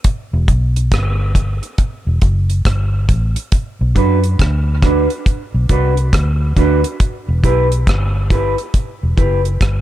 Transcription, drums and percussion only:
0.04 kick loud
0.04 closed hi-hat loud
0.48 kick medium
0.48 closed hi-hat medium
0.76 closed hi-hat medium
0.92 kick loud
0.92 cross-stick loud
0.92 closed hi-hat medium
1.35 kick medium
1.35 closed hi-hat medium
1.63 closed hi-hat soft
1.78 kick loud
1.78 closed hi-hat medium
2.22 kick medium
2.22 closed hi-hat medium
2.50 closed hi-hat soft
2.65 kick loud
2.65 cross-stick loud
2.65 closed hi-hat medium
3.09 kick medium
3.09 closed hi-hat medium
3.36 closed hi-hat medium
3.52 kick loud
3.52 closed hi-hat medium
3.96 kick loud
3.96 closed hi-hat medium
4.24 closed hi-hat medium
4.39 kick loud
4.39 cross-stick loud
4.39 closed hi-hat medium
4.82 kick loud
4.82 cross-stick medium
4.82 closed hi-hat medium
5.10 closed hi-hat soft
5.26 kick loud
5.26 closed hi-hat medium
5.69 kick medium
5.69 closed hi-hat medium
5.97 closed hi-hat soft
6.13 kick loud
6.13 cross-stick loud
6.13 closed hi-hat medium
6.57 kick medium
6.57 closed hi-hat medium
6.84 closed hi-hat medium
7.00 kick loud
7.00 closed hi-hat medium
7.44 kick medium
7.44 closed hi-hat medium
7.72 closed hi-hat soft
7.87 kick loud
7.87 cross-stick medium
7.87 closed hi-hat medium
8.30 kick medium
8.30 closed hi-hat medium
8.58 closed hi-hat soft
8.74 kick loud
8.74 closed hi-hat medium
9.18 kick medium
9.18 closed hi-hat medium
9.45 closed hi-hat soft
9.61 kick loud
9.61 cross-stick loud
9.61 closed hi-hat medium

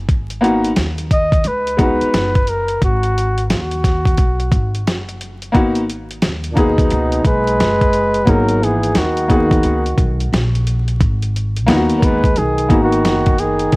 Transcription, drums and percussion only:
0.09 kick medium
0.09 closed hi-hat medium
0.30 closed hi-hat soft
0.44 closed hi-hat medium
0.65 closed hi-hat medium
0.76 snare loud
0.76 closed hi-hat medium
0.98 closed hi-hat soft
1.11 kick medium
1.11 closed hi-hat medium
1.32 kick medium
1.32 closed hi-hat medium
1.44 closed hi-hat medium
1.67 closed hi-hat soft
1.79 kick loud
1.79 closed hi-hat medium
2.01 closed hi-hat soft
2.14 snare loud
2.14 closed hi-hat medium
2.35 kick medium
2.35 closed hi-hat soft
2.47 closed hi-hat medium
2.68 closed hi-hat soft
2.82 kick medium
2.82 closed hi-hat medium
3.03 closed hi-hat soft
3.18 closed hi-hat medium
3.38 closed hi-hat medium
3.50 snare medium
3.50 closed hi-hat medium
3.71 closed hi-hat soft
3.84 kick medium
3.84 snare soft
3.84 closed hi-hat medium
4.05 kick medium
4.05 closed hi-hat soft
4.17 kick medium
4.17 closed hi-hat medium
4.40 closed hi-hat soft
4.52 kick medium
4.52 closed hi-hat medium
4.75 closed hi-hat soft
4.87 snare loud
4.87 closed hi-hat medium
5.09 closed hi-hat soft
5.21 closed hi-hat medium
5.42 closed hi-hat soft
5.55 kick medium
5.55 closed hi-hat medium
5.75 closed hi-hat soft
5.90 closed hi-hat medium
6.11 closed hi-hat medium
6.22 snare loud
6.22 closed hi-hat medium
6.44 closed hi-hat soft
6.57 kick medium
6.57 closed hi-hat medium
6.78 kick medium
6.78 closed hi-hat medium
6.90 closed hi-hat medium
7.12 closed hi-hat soft
7.25 kick medium
7.25 closed hi-hat medium
7.47 closed hi-hat soft
7.60 snare loud
7.60 closed hi-hat medium
7.81 kick medium
7.81 closed hi-hat soft
7.93 closed hi-hat medium
8.14 closed hi-hat soft
8.27 kick medium
8.27 closed hi-hat medium
8.49 closed hi-hat medium
8.63 closed hi-hat medium
8.83 closed hi-hat medium
8.95 snare medium
8.95 closed hi-hat medium
9.17 closed hi-hat soft
9.30 kick medium
9.30 closed hi-hat medium
9.51 kick medium
9.51 closed hi-hat soft
9.63 closed hi-hat medium
9.86 closed hi-hat soft
9.98 kick medium
9.98 closed hi-hat medium
10.20 closed hi-hat soft
10.33 snare loud
10.33 closed hi-hat medium
10.55 closed hi-hat soft
10.67 closed hi-hat medium
10.88 closed hi-hat soft
11.01 kick medium
11.01 closed hi-hat medium
11.22 closed hi-hat medium
11.36 closed hi-hat medium
11.57 closed hi-hat medium
11.68 snare loud
11.68 closed hi-hat medium
11.90 closed hi-hat soft
12.02 kick medium
12.02 closed hi-hat medium
12.24 kick medium
12.24 closed hi-hat soft
12.36 closed hi-hat medium
12.58 closed hi-hat soft
12.70 kick medium
12.70 closed hi-hat medium
12.93 closed hi-hat soft
13.05 snare loud
13.05 closed hi-hat medium
13.26 kick medium
13.26 closed hi-hat soft
13.38 closed hi-hat medium
13.59 closed hi-hat soft
13.72 kick medium
13.72 closed hi-hat medium

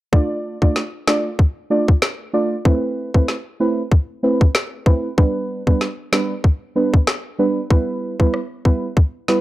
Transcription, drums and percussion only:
0.13 kick loud
0.62 kick medium
0.76 snare medium
1.08 snare loud
1.39 kick medium
1.88 kick medium
2.02 snare loud
2.65 kick loud
3.14 kick medium
3.28 snare medium
3.92 kick loud
4.41 kick loud
4.55 snare loud
4.86 kick loud
5.18 kick loud
5.67 kick medium
5.81 snare medium
6.13 snare loud
6.44 kick loud
6.94 kick loud
7.07 snare loud
7.70 kick loud
8.20 kick medium
8.34 cross-stick medium
8.65 kick medium
8.97 kick loud
9.28 snare medium

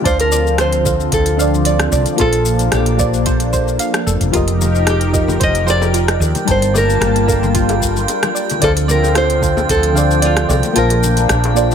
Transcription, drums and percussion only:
0.05 kick loud
0.05 closed hi-hat medium
0.05 shaker soft
0.20 closed hi-hat soft
0.20 shaker soft
0.32 shaker medium
0.47 shaker soft
0.58 cross-stick medium
0.58 closed hi-hat medium
0.58 shaker soft
0.73 closed hi-hat soft
0.73 shaker soft
0.86 kick loud
0.86 shaker medium
1.00 shaker soft
1.12 kick loud
1.12 closed hi-hat medium
1.12 shaker soft
1.26 closed hi-hat soft
1.26 shaker soft
1.40 shaker medium
1.54 shaker soft
1.65 closed hi-hat medium
1.65 shaker soft
1.79 cross-stick medium
1.79 closed hi-hat soft
1.79 shaker soft
1.92 shaker medium
2.06 closed hi-hat soft
2.06 shaker soft
2.18 kick loud
2.18 closed hi-hat medium
2.18 shaker soft
2.33 closed hi-hat soft
2.33 shaker soft
2.45 shaker medium
2.59 closed hi-hat soft
2.59 shaker soft
2.72 cross-stick medium
2.72 closed hi-hat medium
2.72 shaker soft
2.86 closed hi-hat soft
2.86 shaker soft
2.99 kick loud
2.99 shaker medium
3.14 shaker soft
3.26 kick loud
3.26 closed hi-hat medium
3.26 shaker soft
3.40 closed hi-hat soft
3.40 shaker soft
3.53 kick medium
3.53 shaker medium
3.68 shaker soft
3.79 closed hi-hat medium
3.79 shaker soft
3.94 cross-stick medium
3.94 closed hi-hat soft
3.94 shaker soft
4.07 shaker medium
4.21 closed hi-hat soft
4.21 shaker soft
4.34 kick loud
4.34 closed hi-hat medium
4.34 high bongo soft
4.34 shaker soft
4.48 closed hi-hat soft
4.48 shaker soft
4.61 low conga medium
4.61 shaker medium
4.75 shaker soft
4.87 cross-stick medium
4.87 closed hi-hat medium
4.87 high bongo medium
4.87 shaker soft
5.01 closed hi-hat soft
5.01 shaker soft
5.14 kick loud
5.14 shaker medium
5.28 high bongo soft
5.28 low conga medium
5.28 shaker soft
5.41 kick loud
5.41 closed hi-hat medium
5.41 shaker soft
5.55 closed hi-hat soft
5.55 shaker soft
5.68 shaker medium
5.82 high bongo medium
5.82 shaker soft
5.94 closed hi-hat medium
5.94 shaker soft
6.08 cross-stick medium
6.08 closed hi-hat soft
6.08 shaker soft
6.20 high bongo medium
6.20 shaker medium
6.35 closed hi-hat soft
6.35 low conga medium
6.35 shaker soft
6.48 kick loud
6.48 closed hi-hat medium
6.48 shaker soft
6.62 closed hi-hat medium
6.62 shaker soft
6.75 high bongo medium
6.75 low conga medium
6.75 shaker medium
6.90 shaker soft
7.02 cross-stick medium
7.02 closed hi-hat medium
7.02 shaker soft
7.16 closed hi-hat soft
7.16 high bongo medium
7.16 shaker soft
7.29 kick loud
7.29 shaker medium
7.43 low conga medium
7.43 shaker soft
7.55 kick loud
7.55 closed hi-hat medium
7.55 shaker soft
7.69 closed hi-hat soft
7.69 high bongo medium
7.69 shaker soft
7.82 kick medium
7.82 shaker medium
7.96 high conga medium
7.96 shaker soft
8.08 closed hi-hat medium
8.08 high bongo soft
8.08 shaker soft
8.23 cross-stick medium
8.23 closed hi-hat soft
8.23 high conga medium
8.23 shaker soft
8.36 shaker medium
8.50 closed hi-hat soft
8.50 low conga medium
8.50 shaker soft
8.62 kick loud
8.62 closed hi-hat medium
8.62 high bongo medium
8.62 shaker soft
8.77 closed hi-hat medium
8.77 shaker soft
8.89 low conga medium
8.89 shaker medium
9.04 high bongo medium
9.04 shaker soft
9.15 cross-stick medium
9.15 closed hi-hat medium
9.15 shaker soft
9.30 closed hi-hat soft
9.30 shaker soft
9.43 kick loud
9.43 shaker medium
9.57 high bongo medium
9.57 low conga medium
9.57 shaker soft
9.69 kick loud
9.69 closed hi-hat medium
9.69 shaker soft
9.83 closed hi-hat soft
9.83 shaker soft
9.96 high bongo medium
9.96 shaker medium
10.11 shaker soft
10.22 closed hi-hat medium
10.22 shaker soft
10.37 cross-stick medium
10.37 closed hi-hat soft
10.37 shaker soft
10.50 high bongo medium
10.50 shaker medium
10.63 closed hi-hat soft
10.63 low conga medium
10.63 shaker soft
10.76 closed hi-hat medium
10.76 shaker soft
10.90 closed hi-hat medium
10.90 high bongo medium
10.90 shaker soft
11.03 low conga medium
11.03 shaker medium
11.17 closed hi-hat soft
11.17 high conga medium
11.17 shaker soft
11.29 cross-stick medium
11.29 closed hi-hat medium
11.29 shaker soft
11.44 closed hi-hat soft
11.44 high bongo medium
11.44 shaker soft
11.57 shaker medium
11.71 low conga medium
11.71 shaker soft

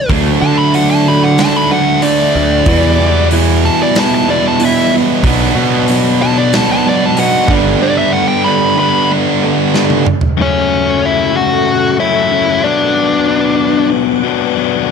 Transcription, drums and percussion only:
0.09 kick medium
0.09 open hi-hat soft
0.74 open hi-hat medium
1.38 snare medium
1.38 open hi-hat medium
2.02 open hi-hat medium
2.66 kick loud
2.66 open hi-hat medium
3.31 open hi-hat medium
3.95 snare loud
3.95 open hi-hat medium
4.60 open hi-hat medium
5.24 kick medium
5.24 open hi-hat medium
5.88 open hi-hat medium
6.53 snare loud
6.53 open hi-hat soft
7.17 open hi-hat medium
7.48 kick loud
7.48 snare soft
9.74 snare medium
9.90 high tom medium
10.06 mid tom medium
10.21 floor tom medium

